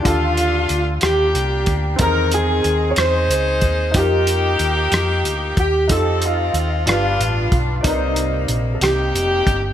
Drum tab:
HH |xxxxxx|xxxxxx|xxxxxx|xxxxxx|
SD |---r--|---r--|---r--|---r--|
BD |o----o|o----o|o----o|o----o|

HH |xxxxxx|
SD |---r--|
BD |o----o|